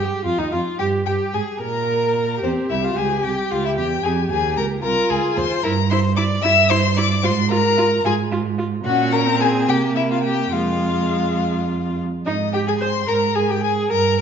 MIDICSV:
0, 0, Header, 1, 5, 480
1, 0, Start_track
1, 0, Key_signature, -4, "minor"
1, 0, Tempo, 544465
1, 697, Time_signature, 6, 3, 24, 8
1, 2620, Tempo, 534759
1, 7900, Tempo, 567644
1, 10780, Tempo, 548948
1, 12487, End_track
2, 0, Start_track
2, 0, Title_t, "Violin"
2, 0, Program_c, 0, 40
2, 219, Note_on_c, 0, 77, 62
2, 348, Note_on_c, 0, 75, 58
2, 361, Note_off_c, 0, 77, 0
2, 447, Note_off_c, 0, 75, 0
2, 453, Note_on_c, 0, 77, 69
2, 523, Note_off_c, 0, 77, 0
2, 697, Note_on_c, 0, 79, 64
2, 767, Note_off_c, 0, 79, 0
2, 934, Note_on_c, 0, 79, 75
2, 1005, Note_off_c, 0, 79, 0
2, 1178, Note_on_c, 0, 80, 65
2, 1249, Note_off_c, 0, 80, 0
2, 1423, Note_on_c, 0, 82, 75
2, 2127, Note_off_c, 0, 82, 0
2, 2146, Note_on_c, 0, 72, 69
2, 2216, Note_off_c, 0, 72, 0
2, 2378, Note_on_c, 0, 76, 73
2, 2508, Note_on_c, 0, 77, 73
2, 2522, Note_off_c, 0, 76, 0
2, 2628, Note_on_c, 0, 80, 69
2, 2641, Note_off_c, 0, 77, 0
2, 2866, Note_on_c, 0, 79, 67
2, 2879, Note_off_c, 0, 80, 0
2, 3106, Note_on_c, 0, 77, 72
2, 3119, Note_off_c, 0, 79, 0
2, 3222, Note_off_c, 0, 77, 0
2, 3231, Note_on_c, 0, 76, 70
2, 3276, Note_off_c, 0, 76, 0
2, 3340, Note_on_c, 0, 79, 79
2, 3572, Note_on_c, 0, 80, 75
2, 3585, Note_off_c, 0, 79, 0
2, 3811, Note_off_c, 0, 80, 0
2, 3817, Note_on_c, 0, 80, 84
2, 4048, Note_off_c, 0, 80, 0
2, 4054, Note_on_c, 0, 82, 76
2, 4125, Note_off_c, 0, 82, 0
2, 4293, Note_on_c, 0, 82, 98
2, 4531, Note_on_c, 0, 80, 81
2, 4544, Note_off_c, 0, 82, 0
2, 4774, Note_on_c, 0, 84, 90
2, 4788, Note_off_c, 0, 80, 0
2, 5010, Note_on_c, 0, 82, 95
2, 5023, Note_off_c, 0, 84, 0
2, 5248, Note_off_c, 0, 82, 0
2, 5254, Note_on_c, 0, 84, 98
2, 5326, Note_off_c, 0, 84, 0
2, 5487, Note_on_c, 0, 86, 86
2, 5559, Note_off_c, 0, 86, 0
2, 5722, Note_on_c, 0, 88, 106
2, 5975, Note_on_c, 0, 84, 97
2, 5988, Note_off_c, 0, 88, 0
2, 6219, Note_on_c, 0, 86, 89
2, 6233, Note_off_c, 0, 84, 0
2, 6459, Note_on_c, 0, 84, 103
2, 6473, Note_off_c, 0, 86, 0
2, 6695, Note_off_c, 0, 84, 0
2, 6701, Note_on_c, 0, 82, 103
2, 7170, Note_off_c, 0, 82, 0
2, 7185, Note_on_c, 0, 80, 94
2, 7256, Note_off_c, 0, 80, 0
2, 7903, Note_on_c, 0, 78, 98
2, 8130, Note_on_c, 0, 82, 104
2, 8143, Note_off_c, 0, 78, 0
2, 8364, Note_off_c, 0, 82, 0
2, 8374, Note_on_c, 0, 80, 86
2, 8441, Note_off_c, 0, 80, 0
2, 8605, Note_on_c, 0, 79, 93
2, 8672, Note_off_c, 0, 79, 0
2, 8834, Note_on_c, 0, 76, 78
2, 8882, Note_off_c, 0, 76, 0
2, 8972, Note_on_c, 0, 77, 76
2, 9071, Note_off_c, 0, 77, 0
2, 9076, Note_on_c, 0, 79, 84
2, 9310, Note_on_c, 0, 77, 86
2, 9322, Note_off_c, 0, 79, 0
2, 10533, Note_off_c, 0, 77, 0
2, 10783, Note_on_c, 0, 75, 77
2, 11006, Note_off_c, 0, 75, 0
2, 11021, Note_on_c, 0, 79, 90
2, 11069, Note_off_c, 0, 79, 0
2, 11149, Note_on_c, 0, 80, 68
2, 11195, Note_off_c, 0, 80, 0
2, 11250, Note_on_c, 0, 84, 76
2, 11501, Note_on_c, 0, 82, 88
2, 11514, Note_off_c, 0, 84, 0
2, 11737, Note_on_c, 0, 80, 79
2, 11750, Note_off_c, 0, 82, 0
2, 11876, Note_on_c, 0, 79, 83
2, 11889, Note_off_c, 0, 80, 0
2, 11980, Note_off_c, 0, 79, 0
2, 11985, Note_on_c, 0, 80, 88
2, 12055, Note_off_c, 0, 80, 0
2, 12231, Note_on_c, 0, 82, 95
2, 12460, Note_off_c, 0, 82, 0
2, 12487, End_track
3, 0, Start_track
3, 0, Title_t, "Violin"
3, 0, Program_c, 1, 40
3, 0, Note_on_c, 1, 67, 54
3, 213, Note_off_c, 1, 67, 0
3, 218, Note_on_c, 1, 65, 62
3, 337, Note_on_c, 1, 63, 52
3, 350, Note_off_c, 1, 65, 0
3, 454, Note_on_c, 1, 65, 56
3, 468, Note_off_c, 1, 63, 0
3, 688, Note_off_c, 1, 65, 0
3, 693, Note_on_c, 1, 67, 57
3, 764, Note_off_c, 1, 67, 0
3, 942, Note_on_c, 1, 67, 55
3, 1188, Note_on_c, 1, 68, 63
3, 1202, Note_off_c, 1, 67, 0
3, 1417, Note_off_c, 1, 68, 0
3, 1423, Note_on_c, 1, 70, 68
3, 2143, Note_on_c, 1, 60, 63
3, 2156, Note_off_c, 1, 70, 0
3, 2376, Note_off_c, 1, 60, 0
3, 2381, Note_on_c, 1, 64, 55
3, 2429, Note_off_c, 1, 64, 0
3, 2488, Note_on_c, 1, 65, 57
3, 2609, Note_on_c, 1, 68, 68
3, 2622, Note_off_c, 1, 65, 0
3, 2849, Note_off_c, 1, 68, 0
3, 2855, Note_on_c, 1, 67, 54
3, 3101, Note_on_c, 1, 65, 61
3, 3114, Note_off_c, 1, 67, 0
3, 3222, Note_on_c, 1, 64, 55
3, 3236, Note_off_c, 1, 65, 0
3, 3332, Note_off_c, 1, 64, 0
3, 3337, Note_on_c, 1, 67, 66
3, 3409, Note_off_c, 1, 67, 0
3, 3581, Note_on_c, 1, 68, 66
3, 3652, Note_off_c, 1, 68, 0
3, 3810, Note_on_c, 1, 68, 67
3, 4047, Note_off_c, 1, 68, 0
3, 4060, Note_on_c, 1, 70, 72
3, 4132, Note_off_c, 1, 70, 0
3, 4291, Note_on_c, 1, 70, 86
3, 4531, Note_on_c, 1, 68, 71
3, 4545, Note_off_c, 1, 70, 0
3, 4777, Note_on_c, 1, 72, 79
3, 4790, Note_off_c, 1, 68, 0
3, 5007, Note_off_c, 1, 72, 0
3, 5012, Note_on_c, 1, 70, 77
3, 5084, Note_off_c, 1, 70, 0
3, 5257, Note_on_c, 1, 72, 81
3, 5487, Note_off_c, 1, 72, 0
3, 5496, Note_on_c, 1, 74, 82
3, 5722, Note_on_c, 1, 76, 94
3, 5735, Note_off_c, 1, 74, 0
3, 5965, Note_on_c, 1, 72, 87
3, 5979, Note_off_c, 1, 76, 0
3, 6204, Note_on_c, 1, 74, 76
3, 6217, Note_off_c, 1, 72, 0
3, 6437, Note_off_c, 1, 74, 0
3, 6443, Note_on_c, 1, 72, 91
3, 6515, Note_off_c, 1, 72, 0
3, 6687, Note_on_c, 1, 70, 85
3, 7163, Note_off_c, 1, 70, 0
3, 7180, Note_on_c, 1, 68, 75
3, 7252, Note_off_c, 1, 68, 0
3, 7900, Note_on_c, 1, 66, 86
3, 8131, Note_on_c, 1, 70, 81
3, 8144, Note_off_c, 1, 66, 0
3, 8364, Note_on_c, 1, 68, 88
3, 8377, Note_off_c, 1, 70, 0
3, 8604, Note_on_c, 1, 67, 77
3, 8617, Note_off_c, 1, 68, 0
3, 8836, Note_off_c, 1, 67, 0
3, 8841, Note_on_c, 1, 64, 66
3, 8955, Note_off_c, 1, 64, 0
3, 8960, Note_on_c, 1, 65, 57
3, 9007, Note_off_c, 1, 65, 0
3, 9078, Note_on_c, 1, 67, 67
3, 9311, Note_off_c, 1, 67, 0
3, 9316, Note_on_c, 1, 65, 66
3, 10512, Note_off_c, 1, 65, 0
3, 10788, Note_on_c, 1, 63, 68
3, 10858, Note_off_c, 1, 63, 0
3, 11015, Note_on_c, 1, 67, 71
3, 11138, Note_on_c, 1, 68, 61
3, 11151, Note_off_c, 1, 67, 0
3, 11263, Note_on_c, 1, 72, 77
3, 11277, Note_off_c, 1, 68, 0
3, 11489, Note_off_c, 1, 72, 0
3, 11495, Note_on_c, 1, 70, 79
3, 11565, Note_off_c, 1, 70, 0
3, 11740, Note_on_c, 1, 68, 71
3, 11851, Note_off_c, 1, 68, 0
3, 11856, Note_on_c, 1, 67, 57
3, 11974, Note_off_c, 1, 67, 0
3, 11980, Note_on_c, 1, 68, 74
3, 12209, Note_off_c, 1, 68, 0
3, 12214, Note_on_c, 1, 70, 78
3, 12452, Note_off_c, 1, 70, 0
3, 12487, End_track
4, 0, Start_track
4, 0, Title_t, "Viola"
4, 0, Program_c, 2, 41
4, 0, Note_on_c, 2, 67, 67
4, 217, Note_off_c, 2, 67, 0
4, 222, Note_on_c, 2, 65, 62
4, 338, Note_on_c, 2, 63, 57
4, 351, Note_off_c, 2, 65, 0
4, 458, Note_off_c, 2, 63, 0
4, 463, Note_on_c, 2, 65, 57
4, 533, Note_off_c, 2, 65, 0
4, 698, Note_on_c, 2, 67, 61
4, 934, Note_off_c, 2, 67, 0
4, 942, Note_on_c, 2, 67, 64
4, 1173, Note_off_c, 2, 67, 0
4, 1178, Note_on_c, 2, 68, 67
4, 1249, Note_off_c, 2, 68, 0
4, 1425, Note_on_c, 2, 70, 76
4, 2128, Note_off_c, 2, 70, 0
4, 2142, Note_on_c, 2, 67, 55
4, 4258, Note_off_c, 2, 67, 0
4, 4299, Note_on_c, 2, 65, 68
4, 5003, Note_off_c, 2, 65, 0
4, 5014, Note_on_c, 2, 64, 59
4, 5086, Note_off_c, 2, 64, 0
4, 5260, Note_on_c, 2, 64, 62
4, 5332, Note_off_c, 2, 64, 0
4, 5491, Note_on_c, 2, 64, 57
4, 5563, Note_off_c, 2, 64, 0
4, 5734, Note_on_c, 2, 64, 70
4, 5806, Note_off_c, 2, 64, 0
4, 5969, Note_on_c, 2, 64, 66
4, 6040, Note_off_c, 2, 64, 0
4, 6209, Note_on_c, 2, 64, 60
4, 6281, Note_off_c, 2, 64, 0
4, 6446, Note_on_c, 2, 65, 67
4, 6518, Note_off_c, 2, 65, 0
4, 6692, Note_on_c, 2, 65, 66
4, 6764, Note_off_c, 2, 65, 0
4, 6934, Note_on_c, 2, 65, 68
4, 7006, Note_off_c, 2, 65, 0
4, 7177, Note_on_c, 2, 65, 69
4, 7249, Note_off_c, 2, 65, 0
4, 7418, Note_on_c, 2, 65, 64
4, 7490, Note_off_c, 2, 65, 0
4, 7657, Note_on_c, 2, 65, 61
4, 7729, Note_off_c, 2, 65, 0
4, 7897, Note_on_c, 2, 61, 60
4, 8241, Note_on_c, 2, 60, 66
4, 8254, Note_off_c, 2, 61, 0
4, 8602, Note_on_c, 2, 58, 68
4, 8615, Note_off_c, 2, 60, 0
4, 9320, Note_on_c, 2, 56, 59
4, 9333, Note_off_c, 2, 58, 0
4, 10605, Note_off_c, 2, 56, 0
4, 10782, Note_on_c, 2, 63, 66
4, 10852, Note_off_c, 2, 63, 0
4, 11025, Note_on_c, 2, 67, 71
4, 11072, Note_off_c, 2, 67, 0
4, 11148, Note_on_c, 2, 68, 61
4, 11194, Note_off_c, 2, 68, 0
4, 11260, Note_on_c, 2, 72, 73
4, 11330, Note_off_c, 2, 72, 0
4, 11499, Note_on_c, 2, 70, 83
4, 11738, Note_on_c, 2, 68, 72
4, 11751, Note_off_c, 2, 70, 0
4, 11858, Note_on_c, 2, 67, 71
4, 11872, Note_off_c, 2, 68, 0
4, 11970, Note_off_c, 2, 67, 0
4, 11975, Note_on_c, 2, 68, 71
4, 12213, Note_on_c, 2, 70, 73
4, 12226, Note_off_c, 2, 68, 0
4, 12456, Note_off_c, 2, 70, 0
4, 12459, Note_on_c, 2, 70, 76
4, 12487, Note_off_c, 2, 70, 0
4, 12487, End_track
5, 0, Start_track
5, 0, Title_t, "Cello"
5, 0, Program_c, 3, 42
5, 220, Note_on_c, 3, 41, 54
5, 268, Note_off_c, 3, 41, 0
5, 341, Note_on_c, 3, 39, 55
5, 388, Note_off_c, 3, 39, 0
5, 460, Note_on_c, 3, 41, 54
5, 530, Note_off_c, 3, 41, 0
5, 699, Note_on_c, 3, 43, 61
5, 935, Note_off_c, 3, 43, 0
5, 939, Note_on_c, 3, 43, 59
5, 1010, Note_off_c, 3, 43, 0
5, 1184, Note_on_c, 3, 44, 58
5, 1255, Note_off_c, 3, 44, 0
5, 1425, Note_on_c, 3, 46, 63
5, 2128, Note_off_c, 3, 46, 0
5, 2144, Note_on_c, 3, 40, 61
5, 2214, Note_off_c, 3, 40, 0
5, 2387, Note_on_c, 3, 36, 61
5, 2614, Note_off_c, 3, 36, 0
5, 2619, Note_on_c, 3, 37, 53
5, 2856, Note_off_c, 3, 37, 0
5, 2862, Note_on_c, 3, 36, 54
5, 2934, Note_off_c, 3, 36, 0
5, 3109, Note_on_c, 3, 37, 55
5, 3343, Note_on_c, 3, 40, 59
5, 3357, Note_off_c, 3, 37, 0
5, 3572, Note_off_c, 3, 40, 0
5, 3577, Note_on_c, 3, 41, 65
5, 3812, Note_off_c, 3, 41, 0
5, 3822, Note_on_c, 3, 39, 64
5, 4057, Note_on_c, 3, 37, 58
5, 4071, Note_off_c, 3, 39, 0
5, 4290, Note_off_c, 3, 37, 0
5, 4296, Note_on_c, 3, 36, 58
5, 4368, Note_off_c, 3, 36, 0
5, 4542, Note_on_c, 3, 37, 62
5, 4614, Note_off_c, 3, 37, 0
5, 4775, Note_on_c, 3, 39, 61
5, 4847, Note_off_c, 3, 39, 0
5, 5016, Note_on_c, 3, 43, 77
5, 5644, Note_off_c, 3, 43, 0
5, 5724, Note_on_c, 3, 43, 78
5, 6361, Note_off_c, 3, 43, 0
5, 6446, Note_on_c, 3, 44, 89
5, 7087, Note_off_c, 3, 44, 0
5, 7173, Note_on_c, 3, 44, 79
5, 7812, Note_off_c, 3, 44, 0
5, 7896, Note_on_c, 3, 46, 78
5, 8599, Note_on_c, 3, 48, 65
5, 8612, Note_off_c, 3, 46, 0
5, 9312, Note_off_c, 3, 48, 0
5, 9317, Note_on_c, 3, 41, 60
5, 10578, Note_off_c, 3, 41, 0
5, 10777, Note_on_c, 3, 44, 71
5, 11412, Note_off_c, 3, 44, 0
5, 11496, Note_on_c, 3, 44, 66
5, 12132, Note_off_c, 3, 44, 0
5, 12217, Note_on_c, 3, 43, 72
5, 12487, Note_off_c, 3, 43, 0
5, 12487, End_track
0, 0, End_of_file